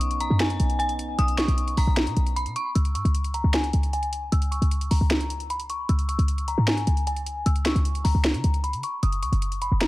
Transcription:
0.00 0.29 B1 loud
0.00 2.72 B3 medium
0.00 2.71 C#4 medium
0.00 2.72 D#4 medium
0.00 0.18 C#6 medium
0.00 closed hi-hat medium
0.11 closed hi-hat medium
0.20 0.37 A#5 medium
0.20 closed hi-hat medium
0.30 0.59 F#2 loud
0.39 0.77 G#5 medium
0.39 finger snap medium
0.39 snare loud
0.39 closed hi-hat medium
0.50 closed hi-hat medium
0.60 1.16 B1 loud
0.60 closed hi-hat medium
0.70 closed hi-hat medium
0.79 1.16 G#5 medium
0.79 closed hi-hat medium
0.89 closed hi-hat medium
0.99 closed hi-hat medium
1.19 1.47 B1 loud
1.19 1.35 D#6 loud
1.19 closed hi-hat medium
1.28 closed hi-hat medium
1.37 1.75 C#6 medium
1.37 finger snap medium
1.37 snare loud
1.37 closed hi-hat medium
1.48 1.76 B1 loud
1.48 closed hi-hat medium
1.58 closed hi-hat medium
1.68 closed hi-hat medium
1.77 1.87 B1 loud
1.77 2.33 A#5 medium
1.77 open hi-hat medium
1.87 2.08 B1 loud
1.96 finger snap medium
1.96 snare loud
1.96 closed hi-hat medium
2.07 2.16 B2 loud
2.07 closed hi-hat medium
2.17 2.48 B1 loud
2.17 closed hi-hat medium
2.27 closed hi-hat medium
2.36 2.53 B5 medium
2.36 closed hi-hat medium
2.46 2.55 B2 loud
2.46 closed hi-hat medium
2.56 2.73 C#6 medium
2.56 closed hi-hat medium
2.75 2.97 C#2 loud
2.75 2.92 E6 medium
2.75 closed hi-hat medium
2.85 closed hi-hat medium
2.95 3.04 G#2 medium
2.95 3.32 C#6 medium
2.95 closed hi-hat medium
3.05 3.42 C#2 loud
3.05 closed hi-hat medium
3.15 closed hi-hat medium
3.24 closed hi-hat medium
3.34 3.51 A#5 medium
3.34 closed hi-hat medium
3.44 3.72 C#2 loud
3.53 3.91 G#5 medium
3.53 finger snap medium
3.53 snare loud
3.53 closed hi-hat medium
3.64 closed hi-hat medium
3.73 4.30 C#2 loud
3.73 closed hi-hat medium
3.83 closed hi-hat medium
3.93 4.30 G#5 medium
3.93 closed hi-hat medium
4.03 closed hi-hat medium
4.13 closed hi-hat medium
4.32 4.61 C#2 loud
4.32 4.49 E6 loud
4.32 closed hi-hat medium
4.42 closed hi-hat medium
4.51 4.89 C#6 medium
4.51 closed hi-hat medium
4.62 4.90 C#2 loud
4.62 closed hi-hat medium
4.71 closed hi-hat medium
4.81 closed hi-hat medium
4.91 5.00 C#2 loud
4.91 5.46 A#5 medium
4.91 open hi-hat medium
5.01 5.86 C#2 loud
5.10 finger snap loud
5.10 snare loud
5.10 closed hi-hat medium
5.21 closed hi-hat medium
5.30 closed hi-hat medium
5.40 closed hi-hat medium
5.50 5.67 B5 medium
5.50 closed hi-hat medium
5.60 closed hi-hat medium
5.70 5.86 C#6 medium
5.70 closed hi-hat medium
5.89 6.17 C#2 loud
5.89 6.06 E6 loud
5.89 closed hi-hat medium
5.99 closed hi-hat medium
6.09 6.46 C#6 medium
6.09 closed hi-hat medium
6.19 6.56 C#2 loud
6.19 closed hi-hat medium
6.28 closed hi-hat medium
6.38 closed hi-hat medium
6.48 6.65 A#5 medium
6.48 closed hi-hat medium
6.58 6.86 G#2 loud
6.67 finger snap medium
6.67 snare loud
6.67 closed hi-hat medium
6.77 closed hi-hat medium
6.87 7.44 C#2 loud
6.87 closed hi-hat medium
6.97 closed hi-hat medium
7.07 7.44 G#5 medium
7.07 closed hi-hat medium
7.16 closed hi-hat medium
7.26 closed hi-hat medium
7.46 7.74 C#2 loud
7.46 7.63 E6 loud
7.46 closed hi-hat medium
7.56 closed hi-hat medium
7.65 8.03 C#6 medium
7.65 finger snap medium
7.65 snare loud
7.65 closed hi-hat medium
7.75 8.04 C#2 loud
7.75 closed hi-hat medium
7.85 closed hi-hat medium
7.95 closed hi-hat medium
8.04 8.14 C#2 loud
8.04 8.60 A#5 medium
8.04 open hi-hat medium
8.15 8.36 C#2 loud
8.24 finger snap medium
8.24 snare loud
8.24 closed hi-hat medium
8.34 8.44 C#3 loud
8.34 closed hi-hat medium
8.44 8.75 C#2 loud
8.44 closed hi-hat medium
8.54 closed hi-hat medium
8.64 8.80 B5 medium
8.64 closed hi-hat medium
8.73 8.83 C#3 loud
8.73 closed hi-hat medium
8.83 9.00 C#6 medium
8.83 closed hi-hat medium
9.03 9.24 F#1 loud
9.03 9.20 D#6 loud
9.03 closed hi-hat medium
9.12 closed hi-hat medium
9.22 9.32 C#2 loud
9.22 9.59 C#6 medium
9.22 closed hi-hat medium
9.32 9.70 F#1 loud
9.32 closed hi-hat medium
9.42 closed hi-hat medium
9.52 closed hi-hat medium
9.62 9.78 B5 medium
9.62 closed hi-hat medium
9.72 9.88 F#1 loud
9.80 9.88 A#5 medium
9.80 finger snap medium
9.80 snare loud
9.80 closed hi-hat medium

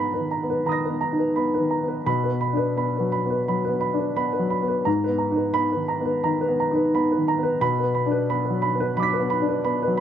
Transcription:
0.00 0.64 G#2 medium
0.00 0.43 B3 soft
0.00 0.11 D#4 soft
0.00 0.14 B4 soft
0.00 0.31 A#5 soft
0.00 0.25 B5 medium
0.14 0.42 B4 soft
0.20 0.58 D#3 soft
0.31 0.60 A#5 soft
0.43 0.81 B3 soft
0.50 0.78 B4 soft
0.65 1.04 D#3 soft
0.65 0.95 A#5 soft
0.65 1.34 B5 soft
0.65 2.04 D#6 soft
0.72 2.06 A#6 soft
0.85 1.27 B3 soft
0.85 1.13 B4 soft
1.01 1.30 A#5 medium
1.13 1.51 D#4 soft
1.18 1.47 B4 soft
1.36 1.75 B3 soft
1.36 1.65 B5 soft
1.54 1.83 B4 soft
1.59 1.97 D#3 soft
1.71 2.00 A#5 soft
1.83 2.07 B3 soft
1.88 2.07 B4 soft
2.06 3.43 B2 medium
2.06 2.35 B5 medium
2.24 2.52 B4 soft
2.31 2.68 B3 soft
2.41 2.69 B5 soft
2.53 2.91 D4 soft
2.53 2.86 B4 soft
2.77 3.14 B3 soft
2.77 3.05 B5 medium
2.97 3.38 F#3 soft
2.97 3.24 B4 soft
3.12 3.40 B5 medium
3.26 3.62 B3 soft
3.30 3.58 B4 soft
3.48 3.85 F#3 soft
3.48 3.76 B5 medium
3.65 3.92 B4 medium
3.69 4.07 B3 soft
3.81 4.09 B5 medium
3.94 4.31 D4 soft
3.99 4.27 B4 soft
4.16 4.54 B3 soft
4.16 4.44 B5 medium
4.33 4.61 B4 soft
4.39 4.77 F#3 soft
4.50 4.79 B5 soft
4.63 4.86 B3 soft
4.68 4.86 B4 medium
4.85 6.21 G#2 medium
4.85 5.14 A#5 medium
5.04 5.32 B4 soft
5.08 5.46 B3 soft
5.18 5.48 A#5 soft
5.32 5.69 D#4 soft
5.36 5.65 B4 soft
5.54 5.92 B3 soft
5.54 5.82 B5 medium
5.72 6.14 D#3 soft
5.72 6.00 B4 soft
5.88 6.17 A#5 medium
6.01 6.38 B3 medium
6.05 6.34 B4 soft
6.24 6.61 D#3 medium
6.24 6.52 A#5 medium
6.41 6.69 B4 medium
6.48 6.85 B3 medium
6.60 6.87 A#5 medium
6.71 7.07 D#4 medium
6.75 7.03 B4 soft
6.95 7.30 B3 medium
6.95 7.21 B5 medium
7.12 7.38 B4 medium
7.17 7.53 D#3 soft
7.28 7.55 A#5 medium
7.39 7.61 B3 medium
7.43 7.61 B4 medium
7.61 8.94 B2 medium
7.61 7.89 B5 medium
7.79 8.06 B4 medium
7.83 8.20 B3 medium
7.95 8.22 B5 medium
8.06 8.43 D4 medium
8.11 8.39 B4 medium
8.30 8.66 B3 medium
8.30 8.57 B5 medium
8.45 8.73 B4 soft
8.50 8.88 F#3 medium
8.62 8.90 B5 medium
8.75 9.11 B3 soft
8.80 9.08 B4 medium
8.97 9.34 F#3 medium
8.97 9.25 B5 medium
8.97 10.00 D6 soft
9.03 10.00 B6 soft
9.13 9.41 B4 medium
9.20 9.56 B3 medium
9.30 9.58 B5 medium
9.42 9.78 D4 medium
9.49 9.76 B4 medium
9.64 10.00 B3 medium
9.64 9.92 B5 medium
9.83 10.00 B4 medium
9.87 10.00 F#3 medium

